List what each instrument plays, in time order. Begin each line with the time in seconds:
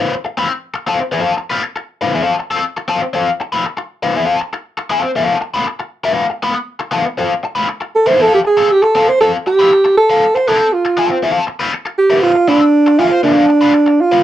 0.00 overdriven electric guitar C4 F4 B4
0.25 muted overdriven electric guitar stroke
0.37 overdriven electric guitar C4 F4 B4
0.50 muted overdriven electric guitar stroke
0.74 muted overdriven electric guitar stroke
0.87 overdriven electric guitar C4 F4 A4
1.00 muted overdriven electric guitar stroke
1.12 overdriven electric guitar C4 F4 A4
1.37 muted overdriven electric guitar stroke
1.50 overdriven electric guitar C4 F4 B4
1.63 muted overdriven electric guitar stroke
1.76 muted overdriven electric guitar stroke
2.01 overdriven electric guitar C4 F4 B4
2.14 overdriven electric guitar C4 F4 A4
2.39 muted overdriven electric guitar stroke
2.51 overdriven electric guitar C4 F4 A4
2.77 muted overdriven electric guitar stroke
2.88 overdriven electric guitar C4 F4 A4
3.02 muted overdriven electric guitar stroke
3.14 overdriven electric guitar C4 F4 A4
3.40 muted overdriven electric guitar stroke
3.52 overdriven electric guitar C4 F4 B4
3.65 muted overdriven electric guitar stroke
3.77 muted overdriven electric guitar stroke
4.03 overdriven electric guitar C4 F4 B4
4.15 overdriven electric guitar C4 F4 A4
4.41 muted overdriven electric guitar stroke
4.53 muted overdriven electric guitar stroke
4.77 muted overdriven electric guitar stroke
4.90 overdriven electric guitar C4 F4 A4
5.03 muted overdriven electric guitar stroke
5.16 overdriven electric guitar B3 F4 A4
5.41 muted overdriven electric guitar stroke
5.54 overdriven electric guitar B3 F4 B4
5.67 muted overdriven electric guitar stroke
5.80 muted overdriven electric guitar stroke
6.04 overdriven electric guitar B3 F4 B4
6.30 muted overdriven electric guitar stroke
6.43 overdriven electric guitar B3 F4 B4
6.55 muted overdriven electric guitar stroke
6.80 muted overdriven electric guitar stroke
6.91 overdriven electric guitar B3 F4 A4
7.05 muted overdriven electric guitar stroke
7.18 overdriven electric guitar C4 F4 A4
7.43 muted overdriven electric guitar stroke
7.55 overdriven electric guitar C4 F4 B4
7.68 muted overdriven electric guitar stroke
7.81 muted overdriven electric guitar stroke
7.95 alto saxophone A4
8.06 overdriven electric guitar C4 F4 B4, alto saxophone C5
8.18 overdriven electric guitar C4 F4 A4, alto saxophone A4
8.34 alto saxophone G4
8.43 alto saxophone G#4, muted overdriven electric guitar stroke
8.57 overdriven electric guitar C4 F4 A4
8.72 alto saxophone G4
8.82 alto saxophone A4, muted overdriven electric guitar stroke
8.95 overdriven electric guitar C4 F4 A4
9.08 alto saxophone C5, muted overdriven electric guitar stroke
9.21 overdriven electric guitar C4 F4 A4, alto saxophone A4
9.46 alto saxophone G4, muted overdriven electric guitar stroke
9.59 overdriven electric guitar C4 F4 B4
9.72 muted overdriven electric guitar stroke
9.85 muted overdriven electric guitar stroke
9.97 alto saxophone A4
10.10 overdriven electric guitar C4 F4 B4
10.35 alto saxophone C5, muted overdriven electric guitar stroke
10.48 overdriven electric guitar C4 F4 B4, alto saxophone A4
10.61 muted overdriven electric guitar stroke
10.73 alto saxophone F4
10.85 muted overdriven electric guitar stroke
10.97 overdriven electric guitar C4 F4 A4
11.11 muted overdriven electric guitar stroke
11.23 overdriven electric guitar C4 F4 A4
11.47 muted overdriven electric guitar stroke
11.59 overdriven electric guitar C4 F4 B4
11.73 muted overdriven electric guitar stroke
11.86 muted overdriven electric guitar stroke
11.98 alto saxophone G4
12.10 overdriven electric guitar C4 F4 B4
12.22 alto saxophone F4
12.35 muted overdriven electric guitar stroke
12.48 overdriven electric guitar C4 F4 B4, alto saxophone D4
12.61 muted overdriven electric guitar stroke
12.87 muted overdriven electric guitar stroke
12.99 overdriven electric guitar C4 F4 A4, alto saxophone F4
13.11 muted overdriven electric guitar stroke
13.23 overdriven electric guitar B3 F4 A4, alto saxophone D4
13.49 muted overdriven electric guitar stroke
13.61 overdriven electric guitar B3 F4 B4
13.73 muted overdriven electric guitar stroke
13.86 muted overdriven electric guitar stroke
14.01 alto saxophone F4
14.12 overdriven electric guitar B3 F4 B4